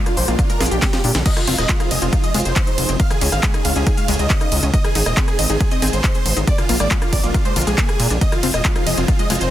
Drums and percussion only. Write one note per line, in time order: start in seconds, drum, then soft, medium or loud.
0.06 cross-stick medium
0.06 closed hi-hat medium
0.17 open hi-hat loud
0.28 closed hi-hat medium
0.39 kick loud
0.39 closed hi-hat medium
0.50 closed hi-hat medium
0.61 snare medium
0.61 open hi-hat loud
0.66 closed hi-hat medium
0.71 closed hi-hat medium
0.82 kick loud
0.82 snare medium
0.82 clap loud
0.82 closed hi-hat medium
0.93 snare medium
0.93 closed hi-hat medium
1.04 open hi-hat loud
1.15 snare medium
1.15 closed hi-hat medium
1.26 kick loud
1.26 closed hi-hat medium
1.26 crash medium
1.26 ride medium
1.37 cross-stick medium
1.37 closed hi-hat medium
1.47 open hi-hat loud
1.47 ride medium
1.58 cross-stick medium
1.58 closed hi-hat medium
1.69 kick loud
1.69 clap loud
1.69 closed hi-hat medium
1.69 ride medium
1.80 cross-stick medium
1.80 closed hi-hat medium
1.91 open hi-hat loud
1.91 ride medium
2.02 closed hi-hat medium
2.13 kick loud
2.13 closed hi-hat medium
2.13 ride medium
2.24 closed hi-hat medium
2.34 open hi-hat loud
2.34 ride medium
2.40 closed hi-hat medium
2.45 closed hi-hat medium
2.56 kick loud
2.56 clap loud
2.56 closed hi-hat medium
2.56 ride medium
2.67 closed hi-hat medium
2.78 open hi-hat loud
2.78 ride medium
2.89 closed hi-hat medium
3.00 kick loud
3.00 closed hi-hat medium
3.00 ride medium
3.11 cross-stick medium
3.11 closed hi-hat medium
3.21 open hi-hat loud
3.21 ride medium
3.32 cross-stick medium
3.32 closed hi-hat medium
3.43 kick loud
3.43 clap loud
3.43 closed hi-hat medium
3.43 ride medium
3.54 cross-stick medium
3.54 closed hi-hat medium
3.65 open hi-hat loud
3.65 ride medium
3.76 closed hi-hat medium
3.87 kick loud
3.87 closed hi-hat medium
3.87 ride medium
3.97 closed hi-hat medium
4.08 open hi-hat loud
4.08 ride medium
4.14 closed hi-hat medium
4.19 closed hi-hat medium
4.30 kick loud
4.30 clap loud
4.30 closed hi-hat medium
4.30 ride medium
4.41 cross-stick medium
4.41 closed hi-hat medium
4.52 open hi-hat loud
4.52 ride medium
4.63 closed hi-hat medium
4.74 kick loud
4.74 closed hi-hat medium
4.74 ride medium
4.84 cross-stick medium
4.84 closed hi-hat soft
4.95 open hi-hat loud
4.95 ride medium
5.06 cross-stick medium
5.06 closed hi-hat soft
5.17 kick loud
5.17 clap loud
5.17 closed hi-hat medium
5.17 ride medium
5.28 cross-stick medium
5.28 closed hi-hat medium
5.39 open hi-hat loud
5.39 ride medium
5.50 closed hi-hat soft
5.61 kick loud
5.61 closed hi-hat medium
5.61 ride medium
5.71 closed hi-hat medium
5.82 open hi-hat loud
5.82 ride medium
5.88 closed hi-hat medium
5.93 closed hi-hat medium
6.04 kick loud
6.04 clap loud
6.04 closed hi-hat medium
6.04 ride medium
6.15 closed hi-hat medium
6.26 open hi-hat loud
6.26 ride medium
6.37 closed hi-hat medium
6.47 kick loud
6.47 closed hi-hat medium
6.47 ride medium
6.58 cross-stick medium
6.58 closed hi-hat soft
6.69 open hi-hat loud
6.69 ride medium
6.80 cross-stick medium
6.80 closed hi-hat medium
6.91 kick loud
6.91 clap loud
6.91 closed hi-hat medium
6.91 ride medium
7.02 cross-stick medium
7.02 closed hi-hat medium
7.13 kick medium
7.13 open hi-hat loud
7.13 ride medium
7.24 closed hi-hat medium
7.34 kick loud
7.34 closed hi-hat medium
7.34 ride medium
7.45 closed hi-hat medium
7.56 open hi-hat loud
7.56 ride medium
7.62 closed hi-hat medium
7.67 closed hi-hat medium
7.78 kick loud
7.78 clap loud
7.78 closed hi-hat medium
7.78 ride medium
7.89 cross-stick medium
7.89 closed hi-hat medium
8.00 open hi-hat loud
8.00 ride medium
8.10 closed hi-hat medium
8.21 kick loud
8.21 closed hi-hat medium
8.21 ride medium
8.32 cross-stick medium
8.32 closed hi-hat soft
8.43 open hi-hat loud
8.43 ride medium
8.54 cross-stick medium
8.54 closed hi-hat medium
8.65 kick loud
8.65 clap loud
8.65 closed hi-hat medium
8.65 ride medium
8.76 cross-stick medium
8.76 closed hi-hat medium
8.87 open hi-hat loud
8.87 ride medium
8.97 closed hi-hat soft
9.08 kick loud
9.08 closed hi-hat medium
9.08 ride medium
9.19 closed hi-hat medium
9.30 open hi-hat loud
9.30 ride medium
9.35 closed hi-hat medium
9.41 closed hi-hat medium